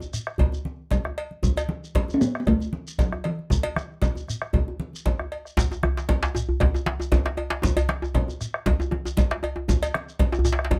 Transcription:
0.00 djembe slap, djembe tone, shekere
0.13 bombo rim, shekere
0.27 bombo rim, djembe slap
0.38 bombo rim, bombo low, cowbell, djembe bass, low conga
0.52 djembe slap, djembe tone, shekere
0.65 high conga
0.91 bombo low, cowbell, djembe slap, low conga, shekere
1.05 bombo rim, djembe tone
1.18 cowbell
1.31 high conga
1.43 bombo low, djembe bass, low conga, shekere
1.57 cowbell, djembe tone, shekere
1.69 high conga
1.84 shekere
1.95 bombo low, cowbell, djembe slap, low conga
2.08 djembe slap, djembe tone, shekere
2.14 C#4
2.21 B3, bombo rim, shekere
2.35 bombo rim, djembe slap
2.40 B3
2.47 A3, bombo rim, bombo low, cowbell, djembe bass, low conga
2.60 djembe slap, djembe tone, shekere
2.73 high conga
2.88 shekere
2.98 F#3, bombo low, cowbell, djembe slap, low conga, shekere
3.12 bombo rim, djembe tone
3.24 E3, cowbell
3.39 high conga
3.50 bombo rim, bombo low, djembe slap, low conga, djembe bass, shekere
3.63 cowbell, djembe slap, djembe tone, high conga
3.76 bombo rim, djembe slap, high conga, shekere
4.02 bombo low, cowbell, djembe slap, low conga, shekere
4.15 djembe tone, shekere
4.28 bombo rim, high conga, shekere
4.42 bombo rim, djembe slap, high conga
4.53 bombo low, cowbell, high conga, djembe bass, low conga
4.68 djembe tone, high conga
4.80 djembe slap, high conga
4.93 high conga, shekere
5.06 bombo low, cowbell, djembe slap, low conga
5.19 bombo rim, djembe tone
5.32 cowbell
5.45 bombo rim, shekere
5.57 bombo low, djembe slap, djembe bass, low conga, shekere
5.71 djembe tone, shekere
5.83 bombo rim, high conga, djembe bass
5.97 djembe slap, shekere
6.09 bombo low, cowbell, djembe slap, djembe tone, low conga
6.23 djembe slap, djembe tone, shekere
6.35 bombo rim, djembe tone, shekere
6.49 djembe slap, djembe bass
6.60 bombo rim, bombo low, cowbell, djembe slap, djembe bass, low conga
6.74 djembe slap, djembe tone, shekere
6.86 djembe slap, high conga
7.00 djembe tone, shekere
7.12 bombo low, cowbell, djembe slap, low conga, djembe bass, shekere
7.25 bombo rim, djembe slap, djembe tone
7.37 cowbell, djembe tone
7.50 djembe slap, high conga
7.62 bombo low, djembe tone, low conga, djembe bass, shekere
7.77 cowbell, djembe tone, djembe bass, shekere
7.89 bombo rim, djembe slap, high conga
8.02 djembe tone, shekere
8.14 bombo low, cowbell, djembe slap, low conga
8.28 djembe slap, djembe tone, shekere
8.41 bombo rim, shekere
8.54 bombo rim, djembe slap
8.66 bombo rim, bombo low, cowbell, djembe slap, djembe bass, low conga
8.80 djembe slap, djembe tone, shekere
8.91 djembe tone, high conga
9.05 djembe tone, shekere
9.17 bombo low, cowbell, djembe slap, low conga, shekere
9.31 bombo rim, djembe slap, djembe tone
9.43 cowbell, djembe tone
9.56 djembe tone, high conga
9.68 bombo low, djembe tone, djembe bass, low conga, shekere
9.82 cowbell, djembe tone, shekere
9.94 bombo rim, high conga
10.09 shekere
10.19 bombo low, cowbell, djembe slap, low conga
10.32 djembe slap, djembe tone, shekere
10.39 djembe bass
10.45 bombo rim, djembe tone, shekere
10.52 djembe slap
10.59 bombo rim, djembe slap
10.65 djembe slap
10.71 bombo rim, bombo low, cowbell, djembe tone, djembe bass, low conga

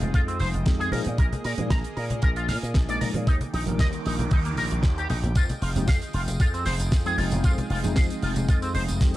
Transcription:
Already playing: F1 F3 G#3 C4 D#4 F4 G#4 D#5 G5
0.01 closed hi-hat, high conga
0.14 F2 F4, kick, closed hi-hat
0.28 C4, closed hi-hat
0.40 F1 C5, open hi-hat, high conga
0.54 F1, closed hi-hat
0.65 F2 F3 G#3 C4 D#4 G4, kick, snare, closed hi-hat
0.80 G#4, closed hi-hat
0.92 A#2 F3 G#3 A#3 D#4 G#4 A#4, open hi-hat, high conga
1.05 A#2, closed hi-hat, low conga
1.18 A#1 A#4, kick, closed hi-hat
1.33 closed hi-hat, high conga
1.44 A#2 A#4, open hi-hat
1.58 A#2 F3 G#3 A#3 D#4 G#4, closed hi-hat, low conga
1.70 A#1 A#5, kick, snare, closed hi-hat, high conga
1.84 closed hi-hat
1.97 A#2 A#4, open hi-hat
2.10 closed hi-hat, high conga
2.22 A#1 A#4, kick, closed hi-hat
2.36 F4, closed hi-hat
2.48 A#2 F5, snare, open hi-hat, high conga
2.63 A#2, closed hi-hat
2.74 A#1, kick, snare, closed hi-hat
2.88 F3 G#3 A#3 D#4 G#4 D5, closed hi-hat
3.01 A#2 A#4, open hi-hat, high conga
3.14 A#2, closed hi-hat, low conga
3.27 D#2 D#3 D#4 G5 D6, kick, closed hi-hat, noise sweep
3.41 closed hi-hat, high conga
3.53 A#1 D#4, open hi-hat
3.66 A#1 D#3 G3 A#3 A#4, closed hi-hat, low conga
3.79 D#2 D#5, kick, snare, closed hi-hat, high conga
3.93 closed hi-hat
4.06 A#1 D#4, open hi-hat
4.19 closed hi-hat, high conga
4.31 D#2 D#4, kick, closed hi-hat
4.45 A#3, closed hi-hat
4.57 A#1 A#4, open hi-hat, high conga
4.71 A#1, closed hi-hat
4.83 D#2, kick, snare, closed hi-hat
4.98 G4, closed hi-hat
5.10 A#1 D#4, open hi-hat, high conga
5.23 A#1, closed hi-hat, low conga
5.35 F2 F4 G#4 D#5, kick, closed hi-hat, tambourine
5.49 closed hi-hat, tambourine, high conga
5.62 F1 F4, open hi-hat
5.75 F1 F3 G#3 C4 D#4 G4, closed hi-hat, tambourine, low conga
5.87 F2 F5, kick, snare, closed hi-hat, tambourine, high conga
6.02 closed hi-hat, tambourine
6.13 F1 F4, open hi-hat
6.28 closed hi-hat, tambourine, high conga
6.40 F2 F4, kick, closed hi-hat, tambourine
6.54 C4, closed hi-hat, tambourine
6.66 F1 C5, snare, open hi-hat, high conga
6.79 F1, closed hi-hat, tambourine
6.92 F2, kick, snare, closed hi-hat, tambourine
7.05 F3 G#3 C4 D#4 G#4 G5, closed hi-hat, tambourine
7.18 F1 F4, open hi-hat, high conga
7.31 F1, closed hi-hat, tambourine, low conga
7.44 F2 F4, kick, closed hi-hat, tambourine
7.58 closed hi-hat, tambourine, high conga
7.70 F1 F4, open hi-hat
7.83 F1 F3 G#3 C4 D#4 G#4, closed hi-hat, tambourine, low conga
7.96 F2 F5, kick, snare, closed hi-hat, tambourine, high conga
8.10 closed hi-hat, tambourine
8.22 F1 F4, open hi-hat
8.36 closed hi-hat, tambourine, high conga
8.48 F2 F4, kick, closed hi-hat, tambourine
8.62 C4, closed hi-hat, tambourine
8.74 F1 C5, open hi-hat, high conga
8.88 F1, closed hi-hat, tambourine
9.00 F2 F3 G#3 C4 D#4 G4, kick, snare, closed hi-hat, tambourine

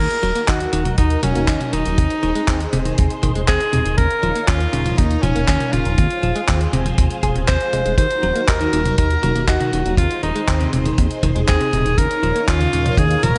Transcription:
0.00 D#4 F#4 A#4
0.10 closed hi-hat
0.23 D#1 F#3, closed hi-hat
0.35 A#3, closed hi-hat
0.48 D#2 D#4 F#4, kick, clap, closed hi-hat
0.60 closed hi-hat
0.73 D#1 D#3, closed hi-hat
0.85 F#3, closed hi-hat, high tom
0.98 D#2 D#3 D#4, kick, closed hi-hat
1.10 closed hi-hat
1.23 D#1 F#3 C#4, closed hi-hat, high tom
1.35 D#1 A#3, closed hi-hat
1.48 D#2 D#4, kick, clap, closed hi-hat
1.61 closed hi-hat, high tom
1.73 D#1 D#3 D#4, closed hi-hat
1.85 D#1 F#3, closed hi-hat
1.98 D#2 C3 G#4 C5, kick, closed hi-hat
2.10 closed hi-hat
2.23 D#1 D#3, closed hi-hat
2.35 G#3, closed hi-hat
2.48 D#2 C4, kick, clap, closed hi-hat
2.60 closed hi-hat
2.73 D#1 C3, closed hi-hat, high tom
2.85 D#3, closed hi-hat, high tom
2.98 D#2 C3, kick, closed hi-hat
3.10 closed hi-hat
3.23 D#1 D#3, kick, closed hi-hat, high tom
3.35 D#1 G#3, closed hi-hat
3.48 D#2 C4 G#4, kick, clap, closed hi-hat
3.61 closed hi-hat
3.73 D#1 C3, closed hi-hat, high tom
3.86 D#1 D#3, closed hi-hat
3.98 D#2 C#3 D#4 A#4 C#5 F5, kick, closed hi-hat
4.11 closed hi-hat
4.23 D#1 F3, closed hi-hat
4.36 A#3, closed hi-hat
4.48 D#2 C#4 F4, kick, clap, closed hi-hat
4.60 closed hi-hat
4.73 D#1 C#3, closed hi-hat
4.86 F3, closed hi-hat, high tom
4.97 D#2 C#3 D#4, kick, closed hi-hat
5.11 closed hi-hat
5.23 D#1 F3 C#4, closed hi-hat, high tom
5.36 D#1 A#3, closed hi-hat
5.48 D#2 C#4, kick, clap, closed hi-hat
5.60 closed hi-hat, high tom
5.73 D#1 C#3 F4, closed hi-hat
5.85 D#1 F3, closed hi-hat
5.98 D#2 C3 F4 G#4 C5, kick, closed hi-hat
6.11 closed hi-hat
6.23 D#1 F3, closed hi-hat
6.36 G#3, closed hi-hat
6.48 D#2 C4, kick, clap, closed hi-hat
6.61 closed hi-hat
6.73 D#1 C3, closed hi-hat, high tom
6.86 F3, closed hi-hat, high tom
6.98 D#2 C3, kick, closed hi-hat
7.10 closed hi-hat
7.23 D#1 G#4, kick, closed hi-hat, high tom
7.36 D#1 C3, closed hi-hat
7.48 D#2 C3 C5, kick, clap, closed hi-hat
7.61 closed hi-hat
7.73 D#1 G#3, closed hi-hat, high tom
7.86 D#1 G#3, closed hi-hat
7.98 D#2 D#3 D#4 F#4 A#4 C5, kick, closed hi-hat
8.11 closed hi-hat
8.23 D#1 F#3, closed hi-hat
8.36 A#3, closed hi-hat
8.48 D#2 D#4 A#4, kick, clap, closed hi-hat
8.61 D#3, closed hi-hat
8.73 D#1 D#3, closed hi-hat
8.85 F#3, closed hi-hat, high tom
8.98 D#2 D#3 A#4, kick, closed hi-hat
9.11 closed hi-hat
9.23 D#1 F#3, closed hi-hat, high tom
9.35 D#1 A#3, closed hi-hat
9.48 D#2 D#4 F#4, kick, clap, closed hi-hat
9.60 D#3, closed hi-hat, high tom
9.73 D#1 D#3, closed hi-hat
9.85 D#1 F#3, closed hi-hat
9.97 D#2 C3 F4 G#4 C5, kick, closed hi-hat
10.11 closed hi-hat
10.23 D#1 D#3 D#4, closed hi-hat
10.36 G#3, closed hi-hat
10.48 D#2 C4, kick, clap, closed hi-hat
10.61 C3, closed hi-hat
10.73 D#1 C3, closed hi-hat, high tom
10.86 D#3, closed hi-hat, high tom
10.98 D#2 C3, kick, closed hi-hat
11.11 closed hi-hat
11.23 D#1 D#3, kick, closed hi-hat, high tom
11.35 D#1 G#3, closed hi-hat
11.48 D#2 C4 G#4, kick, clap, closed hi-hat
11.61 C3, closed hi-hat
11.73 D#1 C3, closed hi-hat, high tom
11.86 D#1 D#3, closed hi-hat
11.98 D#2 C#3 A#4 C#5 F5, kick, closed hi-hat
12.11 closed hi-hat
12.23 D#1 F3, closed hi-hat
12.35 A#3, closed hi-hat
12.48 D#2 C#4 F4, kick, clap, closed hi-hat
12.61 C#3, closed hi-hat
12.73 D#1 C#3, closed hi-hat
12.86 F3, closed hi-hat, high tom
12.97 D#2 C#3 G#4, kick, closed hi-hat
13.11 closed hi-hat
13.23 D#1 F3 A#4, closed hi-hat, high tom

